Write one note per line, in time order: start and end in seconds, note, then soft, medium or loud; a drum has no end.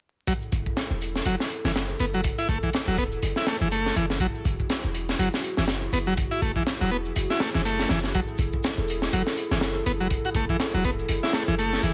0.27 0.33 F#3 loud
0.27 11.94 E4 medium
0.27 11.94 G#4 medium
0.27 4.20 A4 medium
0.27 kick loud
0.27 closed hi-hat medium
0.27 shaker soft
0.42 shaker soft
0.52 0.62 F#1 medium
0.52 kick medium
0.52 closed hi-hat medium
0.52 shaker medium
0.66 kick medium
0.66 shaker soft
0.77 snare loud
0.77 closed hi-hat medium
0.77 shaker soft
0.90 1.21 E1 medium
0.90 shaker soft
1.01 closed hi-hat medium
1.01 shaker medium
1.16 snare soft
1.16 shaker soft
1.25 1.36 F#1 medium
1.25 1.35 F#3 medium
1.25 closed hi-hat medium
1.25 shaker soft
1.40 snare medium
1.40 shaker soft
1.50 closed hi-hat medium
1.50 shaker medium
1.64 1.95 F#1 medium
1.64 1.72 E3 medium
1.64 snare medium
1.64 shaker soft
1.75 snare loud
1.75 closed hi-hat medium
1.75 shaker soft
1.89 shaker soft
1.99 2.32 F#1 medium
1.99 2.05 B3 medium
1.99 closed hi-hat medium
1.99 shaker medium
2.13 2.21 F#3 medium
2.13 shaker soft
2.24 kick loud
2.24 closed hi-hat medium
2.24 shaker soft
2.38 2.48 E4 medium
2.38 closed hi-hat soft
2.38 shaker soft
2.49 2.59 F#1 loud
2.49 2.58 A3 medium
2.49 kick medium
2.49 closed hi-hat medium
2.49 shaker medium
2.63 2.70 E3 medium
2.63 kick medium
2.63 shaker soft
2.73 snare loud
2.73 closed hi-hat medium
2.73 shaker soft
2.87 3.18 E1 medium
2.87 2.97 F#3 medium
2.87 shaker soft
2.98 3.04 B3 medium
2.98 kick medium
2.98 closed hi-hat medium
2.98 shaker medium
3.12 shaker soft
3.22 3.33 F#1 medium
3.22 closed hi-hat medium
3.22 shaker soft
3.36 3.46 E4 medium
3.36 snare soft
3.36 shaker soft
3.47 3.57 A3 medium
3.47 snare loud
3.47 closed hi-hat medium
3.47 shaker medium
3.61 3.91 F#1 medium
3.61 3.68 E3 medium
3.61 shaker soft
3.71 3.95 A3 loud
3.71 closed hi-hat medium
3.71 shaker soft
3.86 snare soft
3.86 shaker soft
3.96 4.29 F#1 medium
3.96 4.06 E3 medium
3.96 closed hi-hat medium
3.96 shaker medium
4.10 snare soft
4.10 shaker soft
4.20 4.27 F#3 medium
4.20 8.13 F#4 medium
4.20 kick loud
4.20 closed hi-hat medium
4.20 shaker soft
4.35 shaker soft
4.45 4.56 F#1 loud
4.45 kick medium
4.45 closed hi-hat medium
4.45 shaker medium
4.60 kick medium
4.60 shaker soft
4.70 snare loud
4.70 closed hi-hat medium
4.70 shaker soft
4.84 5.14 E1 medium
4.84 shaker soft
4.94 closed hi-hat medium
4.94 shaker medium
5.09 snare medium
5.09 shaker soft
5.19 5.29 F#1 medium
5.19 5.29 F#3 medium
5.19 closed hi-hat medium
5.19 shaker soft
5.33 snare medium
5.33 shaker soft
5.43 closed hi-hat medium
5.43 shaker medium
5.57 5.88 F#1 medium
5.57 5.65 E3 medium
5.57 snare medium
5.57 shaker soft
5.68 snare loud
5.68 closed hi-hat medium
5.68 shaker soft
5.82 shaker soft
5.92 6.25 F#1 medium
5.92 5.99 B3 loud
5.92 closed hi-hat medium
5.92 shaker medium
6.07 6.14 F#3 medium
6.07 shaker soft
6.17 kick loud
6.17 closed hi-hat medium
6.17 shaker soft
6.31 6.41 E4 medium
6.31 closed hi-hat soft
6.31 shaker soft
6.42 6.52 F#1 loud
6.42 6.52 A3 medium
6.42 kick medium
6.42 closed hi-hat medium
6.42 shaker medium
6.56 6.63 E3 medium
6.56 kick medium
6.56 shaker soft
6.66 snare loud
6.66 closed hi-hat medium
6.66 shaker soft
6.81 7.11 E1 medium
6.81 6.90 F#3 medium
6.81 shaker soft
6.91 6.97 B3 medium
6.91 shaker medium
7.05 shaker soft
7.16 7.26 F#1 medium
7.16 closed hi-hat medium
7.16 shaker soft
7.30 7.40 E4 medium
7.30 snare soft
7.30 shaker soft
7.40 7.50 A3 medium
7.40 snare loud
7.40 closed hi-hat medium
7.40 shaker medium
7.54 7.85 F#1 medium
7.54 7.62 E3 medium
7.54 snare soft
7.54 shaker soft
7.65 7.89 A3 medium
7.65 closed hi-hat medium
7.65 shaker soft
7.79 snare medium
7.79 shaker soft
7.89 8.22 F#1 medium
7.89 7.99 E3 medium
7.89 snare medium
7.89 closed hi-hat medium
7.89 shaker medium
8.03 snare soft
8.03 shaker soft
8.14 8.20 F#3 medium
8.14 11.94 A4 medium
8.14 kick medium
8.14 closed hi-hat medium
8.14 shaker soft
8.28 shaker soft
8.38 8.49 F#1 medium
8.38 kick loud
8.38 closed hi-hat medium
8.38 shaker medium
8.52 kick medium
8.52 shaker soft
8.63 snare loud
8.63 closed hi-hat medium
8.63 shaker soft
8.77 9.08 E1 loud
8.77 shaker soft
8.88 closed hi-hat medium
8.88 shaker medium
9.02 snare soft
9.02 shaker soft
9.12 9.23 F#1 medium
9.12 9.22 F#3 medium
9.12 closed hi-hat medium
9.12 shaker soft
9.26 snare medium
9.26 shaker soft
9.37 closed hi-hat medium
9.37 shaker medium
9.51 9.82 F#1 medium
9.51 9.58 E3 medium
9.51 snare soft
9.51 shaker soft
9.61 snare loud
9.61 closed hi-hat medium
9.61 shaker soft
9.76 shaker soft
9.86 10.19 F#1 medium
9.86 9.92 B3 loud
9.86 closed hi-hat medium
9.86 shaker medium
10.00 10.08 F#3 medium
10.00 shaker soft
10.10 kick loud
10.10 closed hi-hat medium
10.10 shaker soft
10.25 10.29 F#4 medium
10.25 closed hi-hat soft
10.25 shaker soft
10.34 10.45 F#1 medium
10.34 10.45 A3 medium
10.34 kick medium
10.34 closed hi-hat medium
10.34 shaker medium
10.49 10.57 E3 medium
10.49 kick medium
10.49 shaker soft
10.60 snare loud
10.60 closed hi-hat medium
10.60 shaker soft
10.74 11.05 E1 medium
10.74 10.84 F#3 medium
10.74 shaker soft
10.84 10.90 B3 medium
10.84 kick medium
10.84 closed hi-hat medium
10.84 shaker medium
10.99 shaker soft
11.08 11.19 F#1 medium
11.08 closed hi-hat medium
11.08 shaker soft
11.23 11.33 E4 medium
11.23 snare soft
11.23 shaker soft
11.33 11.43 A3 medium
11.33 snare loud
11.33 closed hi-hat medium
11.33 shaker medium
11.48 11.78 F#1 medium
11.48 11.55 E3 medium
11.48 shaker soft
11.59 11.82 A3 loud
11.59 closed hi-hat medium
11.59 shaker soft
11.73 snare soft
11.73 shaker soft
11.83 11.94 F#1 medium
11.83 11.92 E3 medium
11.83 closed hi-hat medium
11.83 shaker medium